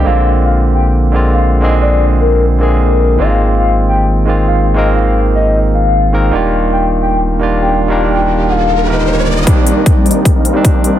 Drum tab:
HH |--------------------------------|--------------------------------|--------------------------------|--------------------------------|
BD |--------------------------------|--------------------------------|--------------------------------|--------------------------------|

HH |--------------------------------|--------------------------------|x---x---x---xx--x---x---x---x---|
BD |--------------------------------|--------------------------------|o-------o-------o-------o-------|